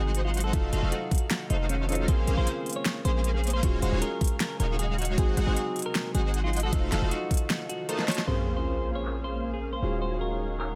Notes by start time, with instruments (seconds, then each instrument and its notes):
Already playing: 808-style bass G#1, ambient pad C3 F#3 G#3 D#4, grand piano F#3 C4 D#4 F#4 G#4, analog polysynth G#3 D#4 F#4 C5 F#5, clean electric guitar G#4
0.15 closed hi-hat
0.25 clean electric guitar F4
0.34 closed hi-hat
0.37 closed hi-hat
0.40 clean electric guitar A4, closed hi-hat
0.52 808-style bass F1, ambient pad D#3 A3 F5, grand piano F#3 D#4 F4 A4, analog polysynth A3 D#4 F#4 C5 F5, kick, closed hi-hat
0.73 808-style bass F1, analog polysynth A3 D#4 F#4 C5 F5, clean electric guitar A4, closed hi-hat
0.80 808-style bass F1, grand piano F#3 D#4 F5, analog polysynth A3 D#4 F#4 C5 F5
0.84 grand piano A4
0.92 clean electric guitar F#4, closed hi-hat
1.11 kick, closed hi-hat
1.15 closed hi-hat
1.18 closed hi-hat
1.31 clean electric guitar F#4, snare, closed hi-hat
1.50 808-style bass F1, analog polysynth A3 D#4 F#4 C5 F5, clean electric guitar D#4, closed hi-hat
1.69 clean electric guitar C#4, closed hi-hat
1.88 grand piano F#3 D#4 F4 A4, clean electric guitar C#4, closed hi-hat
1.92 closed hi-hat
1.95 closed hi-hat
2.07 808-style bass A#1, grand piano C#3 A#3 C4 G#4, ambient pad G#3 A#3, analog polysynth A#3 C#4, clean electric guitar C5, kick, closed hi-hat
2.27 808-style bass A#1, analog polysynth A#3 C#4 G#4 C5 F5, closed hi-hat
2.35 808-style bass A#1, grand piano C#3 A#3 F4 C5, analog polysynth A#3 C#4 G#4 C5 F5, clean electric guitar C5
2.47 closed hi-hat
2.66 closed hi-hat
2.69 closed hi-hat
2.73 clean electric guitar C#5, closed hi-hat
2.86 snare, closed hi-hat
3.05 808-style bass A#1, analog polysynth A#3 C#4 G#4 C5 F5, clean electric guitar C5, closed hi-hat
3.24 closed hi-hat
3.34 clean electric guitar G#4
3.44 closed hi-hat
3.47 closed hi-hat
3.50 clean electric guitar C5, closed hi-hat
3.62 808-style bass D#1, ambient pad C#3 F#3 F5, grand piano F#3 C#4 F4 G#4, analog polysynth G#3 F#4 C#5, kick, closed hi-hat
3.82 808-style bass D#1, analog polysynth G#3 D#4 F#4 C#5 F5, clean electric guitar C5, closed hi-hat
3.90 808-style bass D#1, grand piano F#3 C#4 F5, analog polysynth G#3 D#4 F#4 C#5 F5
3.94 grand piano G#4
4.02 clean electric guitar A#4, closed hi-hat
4.21 kick, closed hi-hat
4.24 closed hi-hat
4.27 closed hi-hat
4.40 clean electric guitar A#4, snare, closed hi-hat
4.60 808-style bass D#1, analog polysynth G#3 D#4 F#4 C#5 F5, clean electric guitar A#4, closed hi-hat
4.79 clean electric guitar G#4, closed hi-hat
4.98 clean electric guitar F#4, closed hi-hat
5.02 closed hi-hat
5.05 closed hi-hat
5.17 808-style bass G#1, ambient pad C3 F#3 D#4, grand piano F#3 C4 D#4 G#4, analog polysynth G#3 D#4 F#4 C5 F#5, clean electric guitar G#4, kick, closed hi-hat
5.37 808-style bass G#1, analog polysynth G#3 D#4 F#4 C5 F#5, closed hi-hat
5.45 808-style bass G#1, grand piano F#3 C4 D#4, analog polysynth G#3 D#4 F#4 C5 F#5, clean electric guitar G#4
5.49 grand piano F#4
5.57 closed hi-hat
5.76 closed hi-hat
5.79 closed hi-hat
5.82 clean electric guitar A#4, closed hi-hat
5.95 snare, closed hi-hat
6.15 808-style bass G#1, analog polysynth G#3 D#4 F#4 C5 F#5, clean electric guitar G#4, closed hi-hat
6.34 closed hi-hat
6.44 clean electric guitar F4
6.53 closed hi-hat
6.57 closed hi-hat
6.60 clean electric guitar A4, closed hi-hat
6.72 808-style bass F1, ambient pad D#3 A3 F#4 F5, grand piano F#3 D#4 F4 A4, analog polysynth A3 D#4 F5, kick, closed hi-hat
6.92 808-style bass F1, analog polysynth A3 D#4 F#4 C5 F5, clean electric guitar A4, snare, closed hi-hat
7.00 808-style bass F1, grand piano F3 F#3 D#4 A4, analog polysynth A3 D#4 F#4 C5 F5
7.11 clean electric guitar F#4, closed hi-hat
7.31 kick, closed hi-hat
7.34 closed hi-hat
7.37 closed hi-hat
7.50 clean electric guitar F#4, snare, closed hi-hat
7.69 clean electric guitar F#4, closed hi-hat
7.89 analog polysynth A3 D#4 F#4 C5 A5, clean electric guitar A#4, closed hi-hat
7.99 snare
8.08 analog polysynth A3 D#4 F#4 C5 A5, clean electric guitar C#5, snare, closed hi-hat
8.11 closed hi-hat
8.15 snare, closed hi-hat
8.26 808-style bass A#1, grand piano C#3 A#3 C4 G#4, ambient pad G#3 A#3, analog polysynth A#3 C#4 G#4 C5 F5, clean electric guitar C5, sub drop
8.55 grand piano C#3 A#3 C5, clean electric guitar C5
8.59 grand piano F4
8.95 clean electric guitar C#5
9.05 clap
9.24 clean electric guitar C5
9.44 closed hi-hat
9.54 clean electric guitar G#4
9.63 closed hi-hat
9.66 closed hi-hat
9.69 clean electric guitar C5, closed hi-hat
9.81 808-style bass D#1, ambient pad C#3 F5, grand piano F#3 C#4 F4 G#4, analog polysynth G#3 D#4 F#4 C#5 F5, closed hi-hat
10.02 clean electric guitar C5
10.10 grand piano F#3 C#4 G#4 F5
10.21 clean electric guitar A#4
10.40 closed hi-hat
10.44 closed hi-hat
10.60 clean electric guitar A#4, clap